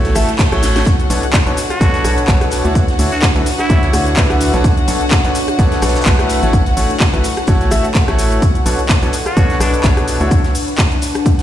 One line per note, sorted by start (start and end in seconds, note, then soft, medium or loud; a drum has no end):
0.00 0.13 A1 medium
0.00 0.13 A3 medium
0.00 0.13 E4 medium
0.00 1.47 E4 medium
0.00 0.13 F#4 medium
0.00 0.13 A4 medium
0.00 0.88 A4 medium
0.00 1.63 A4 medium
0.00 0.13 C#5 loud
0.00 11.43 C#5 medium
0.00 1.59 F#5 medium
0.00 0.88 A5 medium
0.00 reverse cymbal medium
0.05 snare soft
0.05 closed hi-hat soft
0.05 cabasa soft
0.15 0.25 A1 loud
0.15 0.28 A3 loud
0.15 0.28 E4 medium
0.15 0.28 F#4 medium
0.15 0.28 A4 medium
0.15 0.28 E5 loud
0.15 cross-stick medium
0.15 open hi-hat loud
0.15 cabasa medium
0.15 shaker medium
0.29 closed hi-hat soft
0.29 cabasa soft
0.39 kick loud
0.39 snare loud
0.39 clap loud
0.39 closed hi-hat medium
0.39 cabasa soft
0.39 shaker medium
0.52 0.83 A1 medium
0.52 0.85 A3 medium
0.52 0.85 E4 medium
0.52 0.85 F#4 medium
0.52 0.85 A4 medium
0.52 0.85 C#5 loud
0.52 cross-stick medium
0.52 closed hi-hat soft
0.52 cabasa soft
0.62 snare soft
0.62 snare medium
0.62 open hi-hat loud
0.62 cabasa medium
0.62 shaker medium
0.76 snare medium
0.76 closed hi-hat soft
0.76 cabasa soft
0.86 6.30 D4 medium
0.86 11.43 F#4 medium
0.86 11.43 F#5 medium
0.86 kick loud
0.86 closed hi-hat medium
0.86 cabasa soft
0.86 shaker medium
1.00 closed hi-hat soft
1.00 cabasa soft
1.10 1.20 B1 loud
1.10 1.22 B2 medium
1.10 1.22 D4 medium
1.10 1.22 A4 medium
1.10 1.22 B4 medium
1.10 1.22 C#5 medium
1.10 open hi-hat loud
1.10 cabasa medium
1.10 shaker medium
1.23 3.52 B4 medium
1.23 closed hi-hat soft
1.23 cabasa soft
1.33 kick loud
1.33 snare loud
1.33 clap loud
1.33 closed hi-hat medium
1.33 cabasa soft
1.33 shaker loud
1.47 1.55 B1 loud
1.47 1.57 B2 medium
1.47 1.57 D4 medium
1.47 1.57 A4 medium
1.47 1.57 B4 medium
1.47 1.57 C#5 medium
1.47 closed hi-hat soft
1.47 cabasa soft
1.57 open hi-hat medium
1.57 cabasa medium
1.57 shaker medium
1.70 2.17 F#4 loud
1.70 3.51 A5 medium
1.70 cross-stick medium
1.70 closed hi-hat soft
1.70 cabasa soft
1.81 2.02 B1 loud
1.81 2.02 B2 medium
1.81 2.02 D4 medium
1.81 2.02 A4 medium
1.81 2.02 B4 medium
1.81 2.02 C#5 loud
1.81 kick loud
1.81 closed hi-hat medium
1.81 cabasa soft
1.81 shaker medium
1.94 snare soft
1.94 closed hi-hat soft
1.94 cabasa soft
2.04 2.26 B1 loud
2.04 2.26 B2 medium
2.04 2.26 D4 medium
2.04 2.26 A4 medium
2.04 2.26 B4 medium
2.04 2.26 C#5 medium
2.04 cross-stick medium
2.04 open hi-hat loud
2.04 cabasa medium
2.04 shaker medium
2.17 closed hi-hat soft
2.17 cabasa soft
2.28 2.62 B1 medium
2.28 2.62 B2 medium
2.28 2.62 D4 medium
2.28 2.62 A4 medium
2.28 2.62 B4 medium
2.28 2.62 C#5 loud
2.28 kick loud
2.28 snare loud
2.28 clap loud
2.28 closed hi-hat medium
2.28 cabasa soft
2.28 shaker medium
2.41 cross-stick medium
2.41 closed hi-hat soft
2.41 cabasa soft
2.51 snare soft
2.51 open hi-hat loud
2.51 cabasa medium
2.51 shaker medium
2.65 2.97 D2 loud
2.65 2.82 D3 medium
2.65 2.82 D4 medium
2.65 2.82 E4 medium
2.65 2.82 F#4 medium
2.65 2.82 C#5 medium
2.65 closed hi-hat soft
2.65 cabasa soft
2.75 kick loud
2.75 closed hi-hat medium
2.75 cabasa soft
2.75 shaker medium
2.88 snare soft
2.88 closed hi-hat soft
2.88 cabasa soft
2.99 3.09 D2 loud
2.99 3.11 D3 medium
2.99 3.11 D4 medium
2.99 3.11 E4 medium
2.99 3.11 F#4 medium
2.99 3.11 C#5 medium
2.99 open hi-hat loud
2.99 open hi-hat medium
2.99 cabasa medium
3.12 3.23 F#4 loud
3.12 closed hi-hat soft
3.12 cabasa soft
3.22 kick loud
3.22 snare loud
3.22 clap loud
3.22 closed hi-hat medium
3.22 cabasa soft
3.22 shaker loud
3.30 5.31 E5 medium
3.36 3.44 D2 loud
3.36 3.46 D3 medium
3.36 3.46 D4 medium
3.36 3.46 E4 medium
3.36 3.46 F#4 medium
3.36 3.46 B4 medium
3.36 closed hi-hat soft
3.36 cabasa soft
3.46 snare soft
3.46 open hi-hat loud
3.46 cabasa medium
3.46 shaker medium
3.59 3.94 E4 loud
3.59 5.31 F#5 medium
3.59 cross-stick medium
3.59 closed hi-hat soft
3.59 cabasa soft
3.70 3.91 D2 medium
3.70 3.91 D3 medium
3.70 3.91 D4 medium
3.70 3.91 E4 medium
3.70 3.91 F#4 medium
3.70 3.91 C#5 loud
3.70 kick loud
3.70 closed hi-hat medium
3.70 cabasa soft
3.70 shaker medium
3.83 snare soft
3.83 closed hi-hat soft
3.83 cabasa soft
3.93 4.15 D2 loud
3.93 4.15 D3 medium
3.93 4.15 D4 medium
3.93 4.15 E4 medium
3.93 4.15 F#4 medium
3.93 4.15 C#5 medium
3.93 cross-stick medium
3.93 open hi-hat loud
3.93 cabasa medium
3.93 shaker medium
4.06 closed hi-hat soft
4.06 cabasa soft
4.17 4.51 D2 medium
4.17 4.51 D3 loud
4.17 4.51 D4 medium
4.17 4.51 E4 medium
4.17 4.51 F#4 medium
4.17 4.51 B4 loud
4.17 kick loud
4.17 snare loud
4.17 clap loud
4.17 closed hi-hat medium
4.17 cabasa soft
4.17 shaker medium
4.30 cross-stick medium
4.30 closed hi-hat soft
4.30 cabasa soft
4.39 snare soft
4.39 open hi-hat loud
4.39 cabasa medium
4.39 shaker medium
4.54 4.86 B1 medium
4.54 4.71 B2 medium
4.54 4.71 D4 medium
4.54 4.71 A4 medium
4.54 4.71 B4 medium
4.54 4.71 C#5 medium
4.54 closed hi-hat soft
4.54 cabasa soft
4.64 kick loud
4.64 closed hi-hat medium
4.64 cabasa soft
4.64 shaker medium
4.77 7.16 B4 medium
4.77 closed hi-hat soft
4.77 cabasa soft
4.88 4.98 B1 loud
4.88 5.00 B2 medium
4.88 5.00 D4 medium
4.88 5.00 A4 medium
4.88 5.00 B4 medium
4.88 5.00 C#5 medium
4.88 open hi-hat loud
4.88 cabasa medium
4.88 shaker medium
5.01 closed hi-hat soft
5.01 cabasa soft
5.11 kick loud
5.11 snare loud
5.11 clap loud
5.11 closed hi-hat medium
5.11 cabasa soft
5.11 shaker loud
5.24 5.33 B1 loud
5.24 5.35 B2 medium
5.24 5.35 D4 medium
5.24 5.35 A4 medium
5.24 5.35 B4 medium
5.24 5.35 C#5 medium
5.24 7.14 A5 medium
5.24 closed hi-hat soft
5.24 cabasa soft
5.35 open hi-hat loud
5.35 cabasa medium
5.35 shaker medium
5.48 cross-stick medium
5.48 closed hi-hat soft
5.48 cabasa soft
5.59 5.80 B1 loud
5.59 5.80 B2 loud
5.59 5.80 D4 medium
5.59 5.80 A4 medium
5.59 5.80 B4 medium
5.59 5.80 C#5 loud
5.59 kick loud
5.59 closed hi-hat medium
5.59 cabasa soft
5.59 shaker medium
5.72 snare medium
5.72 closed hi-hat soft
5.72 cabasa soft
5.82 6.04 B1 loud
5.82 6.03 B2 medium
5.82 6.03 D4 medium
5.82 6.03 A4 medium
5.82 6.03 B4 medium
5.82 6.03 C#5 medium
5.82 cross-stick medium
5.82 snare medium
5.82 open hi-hat loud
5.82 cabasa medium
5.82 shaker medium
5.88 snare medium
5.88 shaker medium
5.95 snare medium
5.95 closed hi-hat soft
5.95 cabasa soft
5.95 shaker medium
6.01 snare medium
6.01 shaker medium
6.06 6.40 B1 loud
6.06 6.40 A3 loud
6.06 6.40 E4 medium
6.06 6.40 F#4 medium
6.06 6.40 A4 medium
6.06 6.40 B4 loud
6.06 kick loud
6.06 snare loud
6.06 clap loud
6.06 closed hi-hat medium
6.06 cabasa soft
6.06 shaker medium
6.19 cross-stick medium
6.19 closed hi-hat soft
6.19 cabasa soft
6.29 9.18 E4 medium
6.29 snare soft
6.29 open hi-hat loud
6.29 cabasa medium
6.29 shaker medium
6.43 6.75 A1 medium
6.43 6.60 A3 medium
6.43 6.60 E4 medium
6.43 6.60 F#4 medium
6.43 6.60 A4 medium
6.43 6.60 C#5 medium
6.43 closed hi-hat soft
6.43 cabasa soft
6.53 kick loud
6.53 closed hi-hat medium
6.53 cabasa soft
6.53 shaker medium
6.58 9.18 A4 medium
6.66 snare soft
6.66 closed hi-hat soft
6.66 cabasa soft
6.72 9.18 F#5 medium
6.77 6.87 A1 medium
6.77 6.89 A3 medium
6.77 6.89 E4 medium
6.77 6.89 F#4 medium
6.77 6.89 A4 medium
6.77 6.89 C#5 medium
6.77 open hi-hat medium
6.77 open hi-hat loud
6.77 cabasa medium
6.90 closed hi-hat soft
6.90 cabasa soft
7.00 kick loud
7.00 snare loud
7.00 clap loud
7.00 closed hi-hat medium
7.00 cabasa soft
7.00 shaker loud
7.13 7.22 A1 loud
7.13 7.24 A3 medium
7.13 7.24 E4 medium
7.13 7.24 F#4 medium
7.13 7.24 A4 medium
7.13 7.24 B4 medium
7.13 closed hi-hat soft
7.13 cabasa soft
7.24 snare medium
7.24 open hi-hat loud
7.24 cabasa medium
7.24 shaker medium
7.37 cross-stick medium
7.37 closed hi-hat soft
7.37 cabasa soft
7.47 7.69 A1 medium
7.47 7.69 A3 medium
7.47 7.69 E4 medium
7.47 7.69 F#4 medium
7.47 7.69 A4 medium
7.47 7.69 C#5 loud
7.47 kick loud
7.47 closed hi-hat medium
7.47 cabasa soft
7.47 shaker medium
7.61 snare soft
7.61 closed hi-hat soft
7.61 cabasa soft
7.71 7.81 A1 loud
7.71 7.84 A3 loud
7.71 7.84 E4 medium
7.71 7.84 F#4 medium
7.71 7.84 A4 medium
7.71 7.84 E5 loud
7.71 cross-stick medium
7.71 open hi-hat loud
7.71 cabasa medium
7.71 shaker medium
7.84 closed hi-hat soft
7.84 cabasa soft
7.95 kick loud
7.95 snare loud
7.95 clap loud
7.95 closed hi-hat medium
7.95 cabasa soft
7.95 shaker medium
8.08 8.39 A1 medium
8.08 8.41 A3 medium
8.08 8.41 E4 medium
8.08 8.41 F#4 medium
8.08 8.41 A4 medium
8.08 8.41 C#5 loud
8.08 cross-stick medium
8.08 closed hi-hat soft
8.08 cabasa soft
8.19 snare soft
8.19 open hi-hat loud
8.19 cabasa medium
8.19 shaker medium
8.32 closed hi-hat soft
8.32 cabasa soft
8.42 11.43 D4 medium
8.42 kick loud
8.42 closed hi-hat medium
8.42 cabasa soft
8.42 shaker medium
8.53 11.07 B4 medium
8.53 closed hi-hat soft
8.53 cabasa soft
8.66 8.76 B1 loud
8.66 8.78 B2 medium
8.66 8.78 D4 medium
8.66 8.78 A4 medium
8.66 8.78 B4 medium
8.66 8.78 C#5 medium
8.66 open hi-hat loud
8.66 cabasa medium
8.66 shaker medium
8.78 11.07 A5 medium
8.78 closed hi-hat soft
8.78 cabasa soft
8.89 kick loud
8.89 snare loud
8.89 clap loud
8.89 closed hi-hat medium
8.89 cabasa soft
8.89 shaker medium
9.02 9.10 B1 loud
9.02 9.13 B2 medium
9.02 9.13 D4 medium
9.02 9.13 A4 medium
9.02 9.13 B4 medium
9.02 9.13 C#5 medium
9.02 closed hi-hat soft
9.02 cabasa soft
9.13 open hi-hat loud
9.13 cabasa medium
9.13 shaker medium
9.26 9.60 F#4 medium
9.26 cross-stick medium
9.26 closed hi-hat soft
9.26 cabasa soft
9.37 9.58 B1 medium
9.37 9.58 B2 medium
9.37 9.58 D4 medium
9.37 9.58 A4 medium
9.37 9.58 B4 medium
9.37 9.58 C#5 loud
9.37 kick loud
9.37 closed hi-hat medium
9.37 cabasa soft
9.37 shaker medium
9.50 snare soft
9.50 closed hi-hat soft
9.50 cabasa soft
9.60 9.82 B1 medium
9.60 9.81 B2 medium
9.60 9.73 D4 medium
9.60 9.81 D4 medium
9.60 9.82 A4 medium
9.60 9.82 B4 medium
9.60 9.82 C#5 medium
9.60 cross-stick medium
9.60 open hi-hat loud
9.60 cabasa medium
9.60 shaker medium
9.73 closed hi-hat soft
9.73 cabasa soft
9.83 10.18 B1 medium
9.83 10.18 B2 loud
9.83 10.18 D4 medium
9.83 10.18 A4 medium
9.83 10.18 B4 medium
9.83 10.18 C#5 loud
9.83 kick loud
9.83 snare loud
9.83 clap loud
9.83 closed hi-hat medium
9.83 cabasa soft
9.83 shaker medium
9.97 cross-stick medium
9.97 closed hi-hat soft
9.97 cabasa soft
10.08 snare soft
10.08 open hi-hat loud
10.08 cabasa medium
10.08 shaker medium
10.21 10.35 D2 loud
10.21 10.38 D3 medium
10.21 10.38 D4 medium
10.21 10.38 E4 medium
10.21 10.38 F#4 medium
10.21 10.38 C#5 medium
10.21 closed hi-hat soft
10.21 cabasa soft
10.31 kick loud
10.31 closed hi-hat medium
10.31 cabasa soft
10.31 shaker medium
10.44 snare soft
10.44 closed hi-hat soft
10.44 cabasa soft
10.54 open hi-hat medium
10.54 open hi-hat loud
10.54 cabasa medium
10.67 11.43 F#5 medium
10.67 closed hi-hat soft
10.67 cabasa soft
10.78 kick loud
10.78 snare loud
10.78 clap loud
10.78 closed hi-hat medium
10.78 cabasa soft
10.78 shaker loud
10.92 closed hi-hat soft
10.92 cabasa soft
11.02 snare soft
11.02 open hi-hat medium
11.02 cabasa medium
11.02 shaker medium
11.15 cross-stick medium
11.15 closed hi-hat soft
11.15 cabasa soft
11.26 kick loud
11.26 closed hi-hat medium
11.26 cabasa soft
11.26 shaker medium
11.39 snare medium
11.39 closed hi-hat soft
11.39 cabasa soft